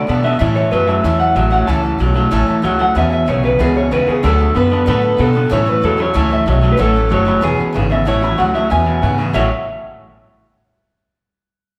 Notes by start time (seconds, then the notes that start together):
Already playing: D5
0.07 B2 D3 F#3 B3 F#4 A4 D5 F#5 A5
0.23 D3 B3 F#4 A4 D5 E5 F#5 A5
0.39 A2 E3 F#3 A3 C#4 A4 C#5 E5 A5
0.55 F#3 A3 C#4 A4 C#5 E5 A5
0.71 F#2 A2 F#3 A3 C#4 A4 B4 C#5 E5 A5
0.87 A2 F#3 A3 C#4 A4 C#5 E5 A5
1.03 E2 A2 E3 F#3 A3 C#4 A4 C#5 E5 A5
1.19 F#3 C#4 A4 C#5 E5 F#5 A5
1.35 A1 A2 F#3 A3 C#4 A4 C#5 E5 A5
1.51 A2 F#3 A3 C#4 A4 C#5 E5 F#5 A5
1.67 C#2 A2 E3 F#3 A3 C#4 A4 C#5 E5 A5
1.83 F#3 A3 C#4 A4 A5
1.98 B1 A2 F#3 A3 C#4 A4 C#5 E5 A5
2.14 A2 F#3 A3 C#4 A4 C#5 E5 A5
2.31 A1 A2 E3 F#3 A3 C#4 A4 C#5 E5 A5
2.47 F#3 A3 C#4 A4 C#5 E5 A5
2.62 C#2 A2 F#3 A3 C#4 A4 C#5 E5 F#5
2.79 A2 F#3 A3 C#4 A4 C#5 E5 F#5 A5
2.95 E2 B2 E3 G#3 B3 C#4 G#4 B4 E5 G#5
3.10 B3 C#4 G#4 B4 E5 G#5
3.26 B1 E2 C#3 G#3 B3 C#4 G#4 B4 C#5 G#5
3.43 E2 C#3 B3 C#4 G#4 B4 E5 G#5
3.59 C#2 E2 B2 E3 G#3 B3 C#4 G#4 B4 E5 G#5
3.75 B3 C#4 G#4 B4 C#5 E5 G#5
3.91 E2 C#3 G#3 B3 C#4 G#4 B4 E5 G#5
4.07 E2 C#3 B3 C#4 G#4 B4 G#5, muted upright bass stroke
4.23 D2 D3 F#3 A3 B3 F#4 A4 D5 F#5 A5
4.39 B3 F#4 A4 F#5 A5
4.54 F#2 D3 F#3 B3 F#4 A4 B4 D5 F#5 A5
4.70 D3 B3 F#4 A4 D5 F#5 A5
4.86 A2 D3 F#3 A3 B3 F#4 A4 B4 D5 F#5 A5
5.01 B3 F#4 A4 D5 F#5 A5
5.17 B2 D3 F#3 B3 F#4 A4 D5 F#5
5.22 A5
5.33 D3 B3 F#4 A4 D5 F#5 A5
5.49 A2 E3 F#3 A3 C#4 A4 C#5 E5 A5
5.65 F#3 A3 C#4 A4 B4 C#5 E5
5.69 A5
5.81 E2 A2 F#3 A3 C#4 A4 C#5 E5 A5
5.97 A2 F#3 A3 C#4 A4 C#5 E5 B5
6.02 C#5
6.14 C#2 A2 E3 F#3 A3 C#4 A4 C#5 E5 A5
6.30 F#3 A3 C#4 A4 C#5 E5 A5
6.46 B1 A2 F#3 A3 C#4 A4 C#5 E5 A5
6.61 A2 F#3 A3 C#4 A4 C#5 E5 A5
6.73 B4
6.77 A1 A2 E3 F#3 A3 C#4 A4 C#5 E5 F#5
6.94 F#3 A3 C#4 A4 C#5 E5 A5
7.09 F#1 A2 F#3 A3 C#4 A4 C#5 E5 A5
7.14 C#5
7.25 A2 F#3 A3 C#4 A4 C#5 E5 B5
7.41 E1 E2 B2 E3 G#3 B3 C#4 G#4 B4 E5 G#5
7.57 B3 C#4 G#4 B4 E5 G#5, muted upright bass stroke
7.73 G#1 E2 C#3 G#3 B3 C#4 G#4 B4 E5 G#5
7.90 E2 C#3 B3 C#4 G#4 B4 E5 G#5
8.05 A1 A2 E3 F#3 A3 C#4 F#4 C#5 E5 A5
8.21 A2 E3 F#3 A3 C#4 F#4 C#5 E5 B5
8.38 C#2 A2 F#3 A3 C#4 F#4 C#5 F#5 A5
8.54 A2 F#3 A3 C#4 F#4 C#5 E5 A5
8.70 E2 B2 E3 G#3 B3 C#4 G#4 B4 E5 G#5
8.86 E2 B2 B3 C#4 G#4 B4 E5 G#5
9.01 E2 G#2 C#3 G#3 B3 C#4 G#4 B4 E5 F#5
9.18 E2 C#3 B3 C#4 G#4 B4 E5 G#5
9.33 A1 A2 E3 F#3 A3 C#4 E4 F#4 C#5 E5 A5